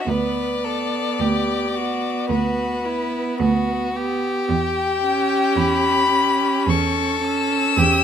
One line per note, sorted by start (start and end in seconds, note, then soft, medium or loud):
0.00 0.11 F#4 soft
0.00 0.09 E5 medium
0.06 1.05 D2 medium
0.06 0.61 B3 soft
0.06 0.66 B4 medium
0.06 2.29 D5 medium
0.62 1.72 B3 soft
0.62 1.23 A4 medium
1.20 2.14 D2 medium
1.20 1.77 G4 medium
1.74 2.82 B3 soft
1.74 2.30 F#4 medium
2.29 3.25 D2 medium
2.29 2.87 F#4 medium
2.29 3.93 B4 medium
2.85 3.94 B3 soft
2.85 3.40 E4 medium
3.40 4.36 D2 medium
3.40 3.98 F#4 medium
3.96 4.49 B3 soft
3.96 6.68 G4 medium
4.49 5.41 E2 medium
4.49 5.58 G5 medium
5.02 6.09 C#4 medium
5.56 6.52 E2 medium
5.56 6.70 B5 loud
6.10 7.21 C#4 medium
6.67 7.63 E2 medium
6.67 7.80 A4 medium
6.67 7.26 C#6 medium
7.23 8.04 C#4 medium
7.23 8.04 E6 loud
7.77 8.04 E2 medium
7.77 8.04 G4 medium